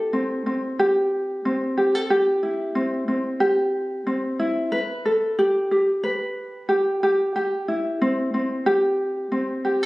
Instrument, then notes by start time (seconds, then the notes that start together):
ukulele
Already playing: C4 E4 G4 A4
0.13 C4
0.46 C4
0.79 G4
1.45 C4
1.77 G4
1.95 A4
2.10 G4
2.43 E4
2.75 C4
3.08 C4
3.40 G4
4.07 C4
4.39 E4
4.72 B4
5.06 A4
5.39 G4
5.71 G4
6.04 B4
6.69 G4
7.03 G4
7.36 G4
7.68 E4
8.02 C4
8.34 C4
8.66 G4
9.32 C4
9.65 G4